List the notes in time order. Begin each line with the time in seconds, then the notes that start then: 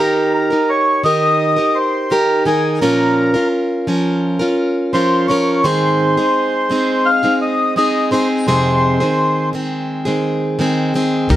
Already playing: D#3
0.00 D#4 G4 A#4
0.34 A#4
0.50 D#4 G4 A#4
0.70 C#5
1.04 D#3 D#4 G4 A#4 D#5
1.56 D#4 G4 A#4
1.75 C5
2.10 D#3 D#4 G4 A#4
2.45 D#3 D#4 G#4 A#4
2.81 A#2 F3 C#4 F4 A#4
3.34 C#4 F4 A#4
3.87 F3 C#4 F4 A#4
4.39 C#4 F4 A#4
4.93 F3 C#4 F4 A#4 C5
5.28 F3 C#4 F4 A#4 C#5
5.64 G#2 D#3 G#3 C4 D#4 G#4 C5
6.17 G#3 C4 D#4 G#4
6.70 G#3 C4 D#4 G#4
7.06 F5
7.23 G#3 C4 D#4 G#4
7.42 D#5
7.76 G#3 C4 D#4 G#4 D#5
8.11 G#3 C4 D#4 G#4 C5
8.47 F2 C3 D#3 G#3 C4 G#4 C5
9.00 D#3 G#3 C4 G#4
9.53 D#3 G#3 C4 G#4
10.05 D#3 G#3 C4 G#4
10.59 D#3 G#3 C4 G#4
10.94 D#3 G#3 C4 G#4
11.29 D#2 D#3 A#3 D#4 G4 A#4, kick